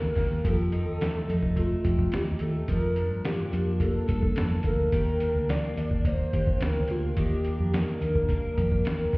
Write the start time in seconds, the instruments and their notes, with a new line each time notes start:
Already playing: steel-string acoustic guitar D#3 A#3 D4 G4, soft synth lead A#4
0.02 fingered electric bass D2
0.15 fingered electric bass D2, steel-string acoustic guitar A#3, kick, snare, open hi-hat
0.30 fingered electric bass D#2
0.44 fingered electric bass F2, steel-string acoustic guitar F3 G4, soft synth lead A4, kick, closed hi-hat
0.72 steel-string acoustic guitar D#4, closed hi-hat
0.86 fingered electric bass D#2
1.01 steel-string acoustic guitar A3, snare, closed hi-hat
1.28 fingered electric bass F2, steel-string acoustic guitar D#4, closed hi-hat
1.43 kick
1.56 steel-string acoustic guitar A3, soft synth lead F4, kick, closed hi-hat
1.84 fingered electric bass F2, steel-string acoustic guitar G4, kick, closed hi-hat
1.99 kick
2.12 fingered electric bass D#2, steel-string acoustic guitar D#4, soft synth lead G4, snare, closed hi-hat
2.39 fingered electric bass D#2, steel-string acoustic guitar A3, soft synth lead A4, closed hi-hat
2.68 fingered electric bass F2, steel-string acoustic guitar F3, soft synth lead A#4, kick, closed hi-hat
2.96 steel-string acoustic guitar D4, closed hi-hat
3.11 fingered electric bass G2
3.25 steel-string acoustic guitar A#3, soft synth lead G4, snare, closed hi-hat
3.52 fingered electric bass F2, steel-string acoustic guitar D4, closed hi-hat
3.80 steel-string acoustic guitar A#3, soft synth lead A4, kick, closed hi-hat
4.08 fingered electric bass G2, steel-string acoustic guitar A4, kick, closed hi-hat
4.23 kick
4.36 fingered electric bass F2, steel-string acoustic guitar D4, soft synth lead A4, snare, closed hi-hat
4.63 fingered electric bass D2, steel-string acoustic guitar A#3, kick, closed hi-hat
4.67 soft synth lead A#4
4.92 fingered electric bass D#2, steel-string acoustic guitar D#3 G4, kick, closed hi-hat
5.20 steel-string acoustic guitar D4, closed hi-hat
5.35 fingered electric bass D2
5.49 steel-string acoustic guitar A#3, soft synth lead D5, snare, closed hi-hat
5.76 fingered electric bass D#2, steel-string acoustic guitar D4, soft synth lead D5, closed hi-hat
5.91 kick
6.04 steel-string acoustic guitar A#3, soft synth lead C5, kick, closed hi-hat
6.33 fingered electric bass D#2, steel-string acoustic guitar G4, kick, closed hi-hat
6.47 kick
6.60 fingered electric bass D2, steel-string acoustic guitar D4, soft synth lead A#4, snare, closed hi-hat
6.88 fingered electric bass D2, steel-string acoustic guitar A#3, soft synth lead F4, closed hi-hat
7.17 fingered electric bass D#2, steel-string acoustic guitar D#3 G4, soft synth lead G4, kick, closed hi-hat
7.44 steel-string acoustic guitar D4, closed hi-hat
7.59 fingered electric bass F2
7.74 steel-string acoustic guitar A#3, soft synth lead A#4, snare, closed hi-hat
8.01 fingered electric bass D#2, steel-string acoustic guitar D4, closed hi-hat
8.15 kick
8.29 steel-string acoustic guitar A#3, kick, closed hi-hat
8.57 fingered electric bass F2, steel-string acoustic guitar G4, kick, closed hi-hat
8.72 kick
8.85 fingered electric bass D#2, steel-string acoustic guitar D4, soft synth lead A#4, snare, closed hi-hat
9.12 fingered electric bass D#2, steel-string acoustic guitar A#3, kick, snare, open hi-hat